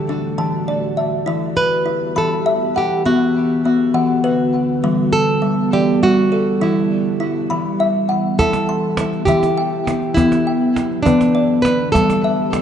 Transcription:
Already playing: D3 E3 A3 F#4 A4
0.09 D4
0.38 E3 A5
0.68 D5
0.97 E5
1.26 E3 B3 E4 G4
1.57 B4
1.86 E4
2.16 E3 A4 B5
2.46 E5
2.76 G4 F#5
3.06 D3 E3 B3 F#4
3.65 B3
3.94 E3 F#5
4.24 B4
4.83 E3 G3
5.13 A4
5.42 G3
5.73 E3 G4 D5
6.03 G3 F#4
6.32 A4
6.61 E3 E4
7.20 E4
7.50 E3 B5
7.80 E5
8.09 F#5
8.39 E3 B3 E4 G4 A4, cajon bass, cajon slap
8.53 cajon slap
8.69 C6
8.97 cajon slap
9.13 cajon slap
9.25 E3 E4 G4 E5, cajon bass
9.43 cajon slap
9.57 G5
9.87 cajon slap
10.02 cajon slap
10.14 D3 E3 B3 E4, cajon bass, cajon slap
10.19 F#3
10.32 cajon slap
10.47 G5
10.76 cajon slap
10.91 cajon slap
11.03 E3 B3 D4 B4, cajon bass
11.21 cajon slap
11.35 D5
11.62 B4, cajon slap
11.80 cajon slap
11.92 E3 G3 G4 A4, cajon bass, cajon slap
12.10 cajon slap
12.24 E5
12.53 cajon slap

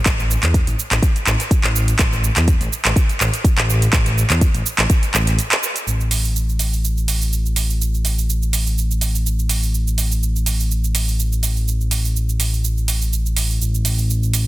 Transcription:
0.06 A1, kick, clap, closed hi-hat, cabasa
0.20 cabasa
0.31 cabasa
0.43 E2, clap, closed hi-hat, cabasa
0.54 kick, closed hi-hat, cabasa
0.67 A1, closed hi-hat, cabasa
0.79 cabasa
0.91 A1, clap, closed hi-hat, cabasa
1.02 kick, closed hi-hat, cabasa
1.16 closed hi-hat, cabasa
1.27 A1, clap, cabasa
1.40 closed hi-hat, cabasa
1.51 kick, closed hi-hat, cabasa
1.64 A1, clap, cabasa
1.76 cabasa
1.88 closed hi-hat, cabasa
1.99 A1, kick, clap, closed hi-hat, cabasa
2.13 cabasa
2.24 cabasa
2.36 E2, clap, closed hi-hat, cabasa
2.48 kick, closed hi-hat, cabasa
2.61 A1, closed hi-hat, cabasa
2.73 cabasa
2.85 A1, clap, closed hi-hat, cabasa
2.96 kick, closed hi-hat, cabasa
3.09 closed hi-hat, cabasa
3.20 A1, clap, cabasa
3.34 closed hi-hat, cabasa
3.44 kick, closed hi-hat, cabasa
3.57 A1, clap, cabasa
3.70 cabasa
3.82 closed hi-hat, cabasa
3.93 A1, kick, clap, closed hi-hat, cabasa
4.06 closed hi-hat, cabasa
4.18 cabasa
4.30 E2, clap, closed hi-hat, cabasa
4.41 kick, closed hi-hat, cabasa
4.54 A1, closed hi-hat, cabasa
4.66 cabasa
4.78 A1, clap, closed hi-hat, cabasa
4.90 kick, closed hi-hat, cabasa
5.03 closed hi-hat, cabasa
5.14 A1, clap, cabasa
5.27 closed hi-hat, cabasa
5.39 closed hi-hat, cabasa
5.52 clap, closed hi-hat, cabasa
5.63 cabasa
5.76 closed hi-hat, cabasa
5.87 A1, cabasa
6.00 cabasa
6.11 open hi-hat, cabasa
6.25 cabasa
6.36 cabasa
6.49 cabasa
6.59 open hi-hat, cabasa
6.73 cabasa
6.85 cabasa
6.97 cabasa
7.08 open hi-hat, cabasa
7.22 cabasa
7.33 cabasa
7.46 cabasa
7.56 open hi-hat, cabasa
7.70 cabasa
7.82 cabasa
7.94 cabasa
8.05 open hi-hat, cabasa
8.18 cabasa
8.30 cabasa
8.43 cabasa
8.53 open hi-hat, cabasa
8.67 cabasa
8.78 cabasa
8.91 cabasa
9.01 open hi-hat, cabasa
9.15 cabasa
9.26 cabasa
9.39 cabasa
9.49 open hi-hat, cabasa
9.63 cabasa
9.74 cabasa
9.87 cabasa
9.98 open hi-hat, cabasa
10.12 cabasa
10.23 cabasa
10.36 cabasa
10.46 open hi-hat, cabasa
10.60 cabasa
10.71 cabasa
10.84 cabasa
10.95 open hi-hat, cabasa
11.08 cabasa
11.20 cabasa
11.33 cabasa
11.43 open hi-hat, cabasa
11.57 cabasa
11.68 cabasa
11.81 cabasa
11.91 open hi-hat, cabasa
12.05 cabasa
12.16 cabasa
12.29 cabasa
12.40 open hi-hat, cabasa
12.54 cabasa
12.64 cabasa
12.78 cabasa
12.88 open hi-hat, cabasa
13.02 cabasa
13.13 cabasa
13.26 cabasa
13.37 open hi-hat, cabasa
13.50 cabasa
13.60 A1, cabasa
13.75 cabasa
13.85 open hi-hat, cabasa
13.99 cabasa
14.10 cabasa
14.23 cabasa
14.34 open hi-hat, cabasa

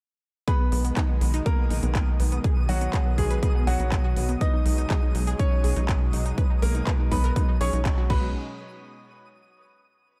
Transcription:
0.48 B2 D#3 G#3 B3 G#4 B4 B5 D#6, kick, closed hi-hat
0.60 B3
0.72 B1 B3, open hi-hat
0.85 B3, closed hi-hat
0.97 D#4, kick, clap, closed hi-hat
1.09 B3
1.21 B1 B3, open hi-hat
1.34 D#4, closed hi-hat
1.46 A#3 B3 A#4 A#5, kick, closed hi-hat
1.59 B3
1.71 B1 D#4, open hi-hat
1.83 B1 B3, closed hi-hat
1.95 B3, kick, clap, closed hi-hat
2.20 B1 B3, open hi-hat
2.32 B3, closed hi-hat
2.44 F#3 G#4, kick, closed hi-hat
2.57 B3
2.69 B1 F#3 F#4 F#5, open hi-hat
2.81 B3, closed hi-hat
2.94 G#4, kick, clap, closed hi-hat
3.06 B3
3.18 B1 G#3 B3 G#4 G#5, kick, open hi-hat
3.31 B4, closed hi-hat
3.43 B3, kick, closed hi-hat
3.55 B3
3.67 B1 F#3 F#4 G#4 F#5, open hi-hat
3.80 B1 B3, closed hi-hat
3.92 B3, kick, clap, closed hi-hat
4.04 F#4
4.16 B1 B3, open hi-hat
4.29 B3, closed hi-hat
4.41 G#3 D#4 B4 D#5 D#6, kick, closed hi-hat
4.54 D#4
4.66 B1 D#4, open hi-hat
4.78 D#4, closed hi-hat
4.90 G#4, kick, clap, closed hi-hat
5.03 D#4
5.15 B1 D#4, open hi-hat
5.27 G#4, closed hi-hat
5.39 C#4 D#4 C#5 C#6, kick, closed hi-hat
5.52 D#4
5.64 B1 G#4, open hi-hat
5.76 B1 D#4, closed hi-hat
5.89 D#4, kick, clap, closed hi-hat
6.13 B1 D#4, open hi-hat
6.26 D#4, closed hi-hat
6.38 B4, kick, closed hi-hat
6.50 D#4
6.62 B1 A#3 A#4 A#5, open hi-hat
6.75 D#4, closed hi-hat
6.87 B4, kick, clap, closed hi-hat
6.99 D#4
7.12 B1 B3 D#4 B4 B5, kick, open hi-hat
7.24 A#4, closed hi-hat
7.36 D#4, kick, closed hi-hat
7.49 D#4
7.61 B1 C#4 G#4 C#5 C#6, open hi-hat
7.73 B1 D#4, closed hi-hat
7.85 D#4, kick, clap, closed hi-hat
7.98 F#4
8.10 B1 B2 F#3 G#3 C#4 D#4 F#4 B4 B5, kick, crash

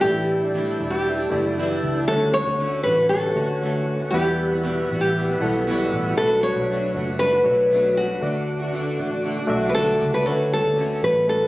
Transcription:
Already playing: A4 A5
0.01 A1 A2 E3 G3 A3 D4 E4 G4 D5 E5 G5
0.41 G3 D4 E4
0.53 A2 E3 G3 D4 E4
0.78 E1 E3 G3 D4 E4
0.90 G4
1.04 E3 G3 D4 E4
1.17 G3 D4 E4
1.30 F#1 E3 G3 A3 D4 E4 G4 D5
1.44 G3 D4 E4
1.49 F#4
1.58 A2 E3 G3 D4 E4
1.83 C#2
1.95 G3 D4 E4
2.07 D2 D3 A3 C#4 D4 F#4 A4 C#5 F#5 C#6
2.34 C#5
2.45 D2 A3 C#4 F#4
2.59 D3 A3 C#4 F#4
2.83 A1 D3 A3 B4
2.87 C#4 F#4
2.97 A3 C#4 F#4
3.09 D3 A3 C#4 A4
3.14 F#4
3.24 A3 C#4 F#4
3.35 D2 D3 A3 C#4 D4 F#4 C#5
3.62 D3 A3 C#4 F#4
3.99 A3 C#4 F#4
4.11 E2 B2 E3 G3 B3 E4 G4 B4 E5 F#5 B5
4.51 E3 G3 B3 F#4
4.62 E2 B2 E3 G3 B3 F#4
4.88 A1 E3 G3 B3 F#4
5.01 G4
5.15 E3 G3 B3 F#4
5.27 E3 G3 B3 F#4
5.40 B1 E3 G3 B3 E4 F#4 A4 F#5
5.54 E3 G3 B3 F#4
5.67 E2 B2 E3 G3 B3 F#4
5.92 A1
6.06 E3 G3 B3 F#4
6.17 B2 F#3 A3 C#4 D4 F#4 A4 B4 F#5 B5
6.23 D4
6.43 C#5
6.56 B1 A3 D4 F#4
6.69 B2 F#3 A3 D4 F#4
6.94 F#1 F#3 A3 D4 F#4
7.07 A3 D4 F#4
7.19 F#3 A3 D4 F#4 B4
7.32 A3 D4 F#4
7.44 B1 F#3 A3 D4 F#4 C#5
7.48 F#4
7.70 B2 F#3 A3 D4 F#4
7.97 F#4
8.10 A3 D4 F#4
8.21 D2 D3 A3 D4 F#4 D5 D6
8.60 A3 D4 F#4
8.72 D3 A3 D4 F#4
8.97 A1 D3 A3 D4 F#4
9.10 A3 D4 F#4
9.23 D3 A3 D4 F#4
9.37 A3 D4 F#4
9.47 B1 D3 A3 D4 F#4 E5
9.52 A3 D4 F#4
9.62 A3 D4 F#4
9.69 B4
9.74 D3 A3 D4 F#4 A4
10.01 C#2
10.13 A3 D4 F#4 B4
10.25 D2 D3 A3 C#4 D4 F#4 A4 C#5
10.51 D3 A3 C#4 F#4 A4
10.64 D2
10.76 D3 A3 C#4 F#4
11.02 A1 D3 A3 C#4 F#4 B4
11.15 A3 C#4 F#4
11.27 A3 D4 F#4 A4 B4
11.41 A3 C#4 F#4

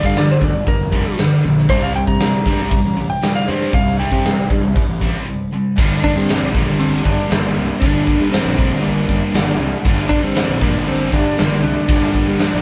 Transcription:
Already playing: G2 D3 G3
0.03 G2 F5, kick
0.16 G2 D3 D5, snare, open hi-hat
0.31 C5
0.41 D2 G2 D3 D5, kick, open hi-hat
0.56 G1
0.66 G2 D3 A#4, kick, open hi-hat
0.81 F1
0.92 G2 D3 G3, kick, open hi-hat
1.18 G2 D3, snare, open hi-hat
1.43 A#1 G2 D3, open hi-hat
1.57 snare
1.69 C2 C3 G3 C4 C5, kick, open hi-hat
1.82 F5
1.94 C3 G3 G5, open hi-hat
2.07 C3 A#5, kick
2.19 C3 G3, snare, open hi-hat
2.45 G2 C3 G3 C4, kick, open hi-hat
2.60 C2
2.71 C3 G3, kick, open hi-hat
2.85 A1
2.97 C3 G3, open hi-hat
3.10 G5
3.22 C3 G3, snare, open hi-hat
3.35 F5
3.48 G2 C3 G3 C4 C5, open hi-hat
3.73 C2 C3 G3 F5, kick, open hi-hat
3.87 snare
3.98 C3 G3 C4 G5, open hi-hat
4.12 C3, kick
4.24 C3 G3, snare, open hi-hat
4.50 G2 C3 G3, kick, open hi-hat
4.64 C2
4.74 C3 G3, kick, open hi-hat
4.88 A1
5.00 C3 G3 C4, kick, open hi-hat
5.25 C3 G3
5.52 C3 G3
5.76 G1 G2 D3 G3 A#3 D4 A#4, kick, crash
6.03 G3 A#3 D4 A#4, kick
6.16 G2 C4
6.29 G3 A#3 D4 A#4, snare, crash
6.42 A#1
6.54 G2 D3 G3 A#3 D4 A#4, kick
6.68 G1
6.79 C4, crash
7.05 G1 G3 A#3 D4 A#4, kick
7.29 G1 G2 D3 G3 A#3 D4 A#4, snare, crash
7.45 snare
7.58 C2
7.80 G1 G2 D3 G3 A#3 D4 A#4, kick, crash
8.06 G3 A#3 D4 A#4, kick
8.20 G2
8.31 G3 A#3 C4 D4 A#4, snare, crash
8.45 A#1
8.56 G2 D3 G3 A#3 D4 A#4, kick
8.71 G1
8.82 A#3, crash
9.08 G1 G3 A#3 D4 A#4, kick
9.34 G1 G2 D3 G3 A#3 D4 A#4, snare, crash
9.48 snare
9.60 C2
9.84 G1 G2 D3 G3 A#3 D4 A#4, kick, crash
10.09 G3 A#3 D4 A#4, kick
10.23 G2 C4
10.35 G3 A#3 D4 A#4, snare, crash
10.49 A#1
10.61 G2 D3 G3 A#3 D4 A#4, kick
10.75 G1
10.87 C4, crash
11.12 G1 G3 A#3 D4 A#4, kick
11.38 G1 G2 D3 G3 A#3 D4 A#4, snare, crash
11.63 C2 D4
11.88 G1 G2 D3 G3 A#3 D4 A#4, kick, crash
12.14 G3 A#3 D4 A#4, kick
12.27 G2
12.39 G3 A#3 D4 A#4, snare, crash
12.53 A#1

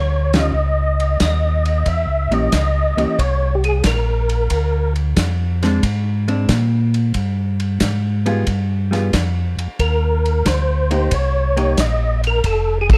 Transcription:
Already playing: D2 C#5
0.33 D#3 G3 C#4 F4 D#5, snare, ride
0.53 C#2
1.00 ride
1.20 D#2 D#5, kick, snare, hi-hat pedal, ride
1.65 ride
1.85 E2 E5, kick, ride
2.06 C#2
2.28 A#1 E3 A#3, ride
2.32 C#4 G4 D#5
2.52 C#2, kick, snare, hi-hat pedal, ride
2.96 C#2 E3 A#3 C#4 G4, ride
3.18 C2 C#5, kick, ride
3.55 G4
3.64 G#4, ride
3.84 A#1 A#4, kick, snare, hi-hat pedal, ride
4.29 ride
4.50 D2, kick, ride
4.96 ride
5.16 F2, kick, snare, hi-hat pedal, ride
5.63 G#3 C4 D4, snare, ride
5.83 G#2, kick, ride
6.28 G#3 C4 D4, ride
6.49 A#2, kick, snare, hi-hat pedal, ride
6.94 ride
7.14 G2, kick, ride
7.60 ride
7.80 G#2, kick, snare, hi-hat pedal, ride
8.26 G3 B3 F4 G#4, ride
8.47 G2, kick, ride
8.91 G3 B3 F4 G#4, snare, ride
9.13 F2, kick, snare, hi-hat pedal, ride
9.57 F2, ride
9.79 D#2 A#4, kick, ride
10.26 ride
10.45 D2 C5, kick, snare, hi-hat pedal, ride
10.91 A#3 D#4 G4, ride
11.11 C2 C#5, kick, ride
11.57 A#3 D#4 G4, ride
11.77 A#1 D#5, kick, snare, hi-hat pedal, ride
12.24 A#4, ride
12.44 F1 A4, kick, ride
12.81 G#4
12.90 A4, kick, crash

